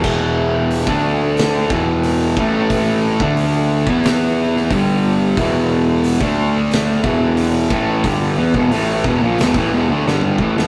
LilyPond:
<<
  \new Staff \with { instrumentName = "Distorted electric guitar" } { \clef bass \time 4/4 \key e \minor \tempo 4 = 90 <e, b, e>4~ <e, b, e>16 <d a d'>4~ <d a d'>16 <e, b, e>4 <a, e a>8~ | <a, e a>8. <d a d'>4 <e b e'>4~ <e b e'>16 <g, d g>4 | <e, b, e>4~ <e, b, e>16 <d a d'>4~ <d a d'>16 <e, b, e>4 <a, e a>8 | <g, d g>8 <e b>16 <e, b,>16 <a, e a>8 <e, b,>16 <ais, f>16 <e, b,>16 <a, e>16 <e, b,>16 <d a>16 <g, d g>8 <a, e>16 <e, b,>16 | }
  \new Staff \with { instrumentName = "Picked electric bass" } { \clef bass \time 4/4 \key e \minor e,,4~ e,,16 d,4~ d,16 e,,4 a,,8~ | a,,8. d,4 e,4~ e,16 g,,4 | e,,4~ e,,16 d,4~ d,16 e,,4 a,,8 | g,,8 e,16 e,,16 a,,8 e,,16 ais,,16 e,,16 a,,16 e,,16 d,16 g,,8 a,,16 e,,16 | }
  \new DrumStaff \with { instrumentName = "Drums" } \drummode { \time 4/4 <cymc bd>4 hho16 bd8. <hho sn>8 bd8 hho8 bd8 | <hho bd>8. bd16 hho8. bd16 <hho sn>8. sn16 <hho bd>4 | <hho bd>4 hho16 bd8. <hho sn>8 bd8 hho8 bd8 | <hho bd>8. bd16 hho8 bd8 <hho sn>16 bd8. sn16 toml16 bd16 sn16 | }
>>